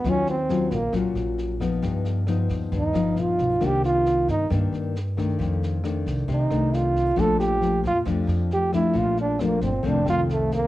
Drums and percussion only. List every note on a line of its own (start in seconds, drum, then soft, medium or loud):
0.04 kick medium
0.04 cross-stick medium
0.04 snare soft
0.26 snare soft
0.49 snare soft
0.71 kick soft
0.71 snare soft
0.93 kick medium
0.93 cross-stick medium
0.93 snare soft
1.16 snare soft
1.38 snare soft
1.61 kick soft
1.61 cross-stick medium
1.61 snare soft
1.82 kick medium
1.82 snare soft
2.05 snare soft
2.27 cross-stick medium
2.27 snare soft
2.49 kick soft
2.49 snare soft
2.72 kick medium
2.72 snare soft
2.94 cross-stick medium
2.94 snare soft
3.16 snare soft
3.39 kick soft
3.39 snare soft
3.61 kick medium
3.61 cross-stick medium
3.61 snare soft
3.84 snare soft
4.06 snare soft
4.28 kick soft
4.28 snare soft
4.50 kick medium
4.50 cross-stick medium
4.50 snare soft
4.74 snare soft
4.96 snare soft
5.18 kick soft
5.18 cross-stick medium
5.18 snare soft
5.40 kick medium
5.40 snare soft
5.63 snare soft
5.84 cross-stick medium
5.84 snare soft
6.06 kick soft
6.06 snare soft
6.28 kick medium
6.28 snare soft
6.51 cross-stick medium
6.51 snare soft
6.73 snare soft
6.95 kick soft
6.95 snare soft
7.17 kick medium
7.17 cross-stick medium
7.17 snare soft
7.40 snare soft
7.62 snare soft
7.84 kick soft
7.84 snare soft
8.06 kick medium
8.06 cross-stick medium
8.06 snare soft
8.28 snare soft
8.51 snare soft
8.73 kick soft
8.73 cross-stick medium
8.73 snare soft
8.95 kick medium
8.95 snare soft
9.17 snare soft
9.39 cross-stick medium
9.39 snare soft
9.61 kick soft
9.61 snare soft
9.84 kick medium
9.84 snare soft
10.07 cross-stick medium
10.07 snare soft
10.29 snare soft
10.51 kick soft
10.51 snare soft